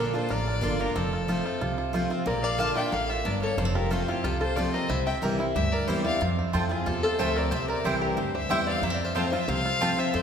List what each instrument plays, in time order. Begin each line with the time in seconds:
Already playing: steel-string acoustic guitar A#2 D3 A#3, five-string banjo A#3 D4 F4 A#4, fiddle A4
0.00 steel-string acoustic guitar D4 F4, resonator guitar played with a steel bar F4
0.14 five-string banjo D4, steel-string acoustic guitar D4 F4, resonator guitar played with a steel bar A4, fiddle C5
0.29 upright bass A1, steel-string acoustic guitar F2, five-string banjo F4, resonator guitar played with a steel bar A#4, fiddle D5
0.48 five-string banjo D4
0.61 upright bass G1, steel-string acoustic guitar D3 A#3 D4 F4, five-string banjo F4
0.79 five-string banjo A#3, steel-string acoustic guitar D4 F4, resonator guitar played with a steel bar G4, fiddle A#4
0.95 upright bass F1, steel-string acoustic guitar F2, five-string banjo C4, resonator guitar played with a steel bar F4, fiddle A4
1.13 five-string banjo F4
1.28 steel-string acoustic guitar F3 A3 C4 F4, five-string banjo F4
1.46 five-string banjo F4
1.60 upright bass C2, steel-string acoustic guitar C3, five-string banjo F4
1.78 five-string banjo F4
1.93 steel-string acoustic guitar F3 A3 C4 F4, five-string banjo F4
2.10 five-string banjo C4, steel-string acoustic guitar C4 F4
2.26 upright bass A#1, steel-string acoustic guitar A#2, five-string banjo A#3, resonator guitar played with a steel bar A#4, fiddle D5
2.42 five-string banjo A#4, resonator guitar played with a steel bar D5, fiddle F5
2.58 steel-string acoustic guitar D3 A#3 D4 F4, five-string banjo A#3, resonator guitar played with a steel bar F5, fiddle A5
2.75 steel-string acoustic guitar D4 F4, five-string banjo F4, resonator guitar played with a steel bar E5, fiddle G5
2.92 upright bass A1, steel-string acoustic guitar A3, five-string banjo A#3, resonator guitar played with a steel bar D5, fiddle F5
3.09 five-string banjo F4, resonator guitar played with a steel bar C5, fiddle E5
3.25 upright bass G1, steel-string acoustic guitar G2, five-string banjo D4, resonator guitar played with a steel bar A#4, fiddle D5
3.42 five-string banjo A#3, resonator guitar played with a steel bar A4, fiddle C#5
3.57 upright bass F1, steel-string acoustic guitar F2, five-string banjo A#3, resonator guitar played with a steel bar A4, fiddle C5
3.65 five-string banjo C4
3.75 five-string banjo F4, resonator guitar played with a steel bar G4, fiddle A#4
3.90 steel-string acoustic guitar F3 A3 C4 F4, resonator guitar played with a steel bar F4, five-string banjo F4, fiddle A4
4.08 steel-string acoustic guitar C4 F4, resonator guitar played with a steel bar E4, five-string banjo F4, fiddle G4
4.24 upright bass C2, steel-string acoustic guitar C3, five-string banjo F4, resonator guitar played with a steel bar F4, fiddle A4
4.41 five-string banjo F4, resonator guitar played with a steel bar A4, fiddle C5
4.56 steel-string acoustic guitar F3 A3 C4 F4, five-string banjo F4, resonator guitar played with a steel bar A4, fiddle D5
4.72 five-string banjo C4, steel-string acoustic guitar C4 F4, resonator guitar played with a steel bar A#4, fiddle D#5
4.89 upright bass C2, steel-string acoustic guitar C3, five-string banjo E4, resonator guitar played with a steel bar C5, fiddle E5
5.06 five-string banjo C4, resonator guitar played with a steel bar E5, fiddle G5
5.22 upright bass C2, steel-string acoustic guitar E3 G3 C4 E4, five-string banjo A#4
5.38 steel-string acoustic guitar C4 E4, five-string banjo E4
5.55 upright bass D2, steel-string acoustic guitar G2, five-string banjo G4, resonator guitar played with a steel bar C5, fiddle E5
5.72 resonator guitar played with a steel bar A#4, five-string banjo A#4, fiddle D5
5.87 upright bass E2, steel-string acoustic guitar E3 G3 C4 E4, five-string banjo E4, resonator guitar played with a steel bar G4, fiddle C5
6.04 five-string banjo C4, steel-string acoustic guitar C4 E4, resonator guitar played with a steel bar D5, fiddle F5
6.21 steel-string acoustic guitar F2, upright bass F2, five-string banjo F4
6.39 five-string banjo C4
6.53 upright bass F2, steel-string acoustic guitar F3 A3 C4 F4, mandolin C4 F4 C5 A5, five-string banjo F4
6.69 steel-string acoustic guitar C4 F4, resonator guitar played with a steel bar E4, five-string banjo F4, fiddle G#4
6.86 upright bass E2, steel-string acoustic guitar C3, resonator guitar played with a steel bar F4, five-string banjo F4, fiddle A4
7.03 five-string banjo F4, resonator guitar played with a steel bar A4, fiddle C5
7.19 upright bass D2, steel-string acoustic guitar F3 A3 C4 F4, mandolin C4 F4 C5 A5, five-string banjo F4, resonator guitar played with a steel bar C5, fiddle E5
7.36 five-string banjo C4, resonator guitar played with a steel bar A#4, fiddle D5
7.51 upright bass C2, steel-string acoustic guitar C3, five-string banjo C4, resonator guitar played with a steel bar C5, fiddle E5
7.68 resonator guitar played with a steel bar A#4, five-string banjo A#4, fiddle D5
7.84 upright bass C2, steel-string acoustic guitar E3 G3 C4 E4, mandolin C4 E4 C5 G5, five-string banjo C4, resonator guitar played with a steel bar G4, fiddle C5
8.01 resonator guitar played with a steel bar G4, five-string banjo G4, fiddle A#4
8.16 upright bass D2, steel-string acoustic guitar G2, five-string banjo C4, resonator guitar played with a steel bar G4, fiddle C5
8.35 five-string banjo G4, resonator guitar played with a steel bar C5, fiddle E5
8.49 upright bass E2, steel-string acoustic guitar E3 G3 C4 E4, mandolin C4 E4 C5 G5, five-string banjo E4, resonator guitar played with a steel bar E5, fiddle G5
8.67 five-string banjo C4, resonator guitar played with a steel bar D5, fiddle F5
8.82 upright bass F2, steel-string acoustic guitar F2, five-string banjo A#3, resonator guitar played with a steel bar C5, fiddle E5
8.90 five-string banjo C4, resonator guitar played with a steel bar A#4
8.94 fiddle D5
9.00 five-string banjo F4
9.05 resonator guitar played with a steel bar C5, fiddle E5
9.15 steel-string acoustic guitar F3 A3 C4 F4, mandolin C4 F4 C5 A5, five-string banjo C4, resonator guitar played with a steel bar C5, fiddle F5
9.31 steel-string acoustic guitar C4 F4, five-string banjo F4, resonator guitar played with a steel bar C5, fiddle E5
9.48 upright bass C2, steel-string acoustic guitar C3, five-string banjo C4, resonator guitar played with a steel bar C5, fiddle F5
9.65 five-string banjo F4
9.81 steel-string acoustic guitar F3 A3 C4 F4, mandolin C4 F4 C5 A5, five-string banjo F4
9.97 five-string banjo C4, steel-string acoustic guitar C4 F4, resonator guitar played with a steel bar C5, fiddle E5
10.13 steel-string acoustic guitar F2, upright bass F2, five-string banjo C4, resonator guitar played with a steel bar A4, fiddle C5